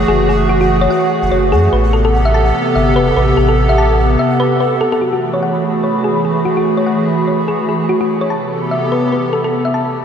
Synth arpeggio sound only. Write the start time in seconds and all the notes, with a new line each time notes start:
0.08 G#4
0.29 G#4
0.49 F#4
0.61 F#4
0.81 C#5
0.90 F#5
1.32 C#5
1.52 G#4
1.73 B4
1.93 A4
2.05 A4
2.25 E5
2.34 A5
2.75 E5
2.96 B4
3.17 B4
3.37 A4
3.49 A4
3.69 E5
3.78 A5
4.19 E5
4.40 B4
4.60 B4
4.81 A4
4.92 A4
5.01 F#4
5.13 F#4
5.34 C#5
5.43 F#5
5.84 C#5
6.04 G#4
6.25 G#4
6.45 F#4
6.57 F#4
6.77 C#5
6.87 F#5
7.28 C#5
7.48 G#4
7.69 G#4
7.89 F#4
8.01 F#4
8.21 C#5
8.30 A5
8.71 E5
8.92 B4
9.12 B4
9.33 A4
9.44 A4
9.65 E5
9.74 A5